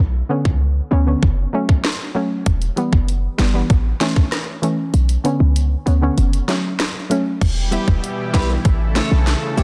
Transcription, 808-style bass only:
0.00 0.23 B1 loud
0.45 0.81 C#2 medium
0.92 1.15 D2 medium
1.23 1.46 F#1 loud
2.46 2.70 E1 loud
2.93 3.28 F#1 medium
3.39 3.63 G1 medium
3.70 3.94 A1 loud
4.94 5.18 B1 loud
5.40 5.76 C#2 medium
5.87 6.10 D2 medium
6.18 6.41 F#1 loud
7.41 7.77 E1 loud
7.88 8.00 E1 medium
8.34 8.58 B1 medium
8.65 9.01 A1 loud
9.11 9.35 B1 medium
9.58 9.63 A1 medium

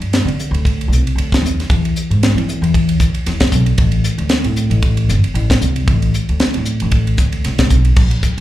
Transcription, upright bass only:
0.00 0.23 G2 medium
0.25 0.49 D3 medium
0.51 0.90 D2 medium
0.88 1.02 C2 medium
1.15 1.29 D2 medium
1.42 1.66 D#2 medium
1.70 1.93 E2 medium
2.10 2.33 G#2 medium
2.35 2.59 E3 medium
2.62 3.00 E2 medium
3.00 3.13 D2 medium
3.27 3.39 E2 medium
3.52 3.75 B1 medium
3.78 4.02 A1 medium
4.18 4.42 D2 medium
4.45 4.68 A2 medium
4.70 5.10 A1 medium
5.09 5.22 G1 medium
5.34 5.48 A1 medium
5.61 5.85 C2 medium
5.88 6.11 A1 medium
6.29 6.52 D2 medium
6.56 6.78 A2 medium
6.82 7.17 A1 medium
7.18 7.42 D2 medium
7.45 7.69 C2 medium
7.71 7.94 B1 medium
7.97 8.20 A#1 medium

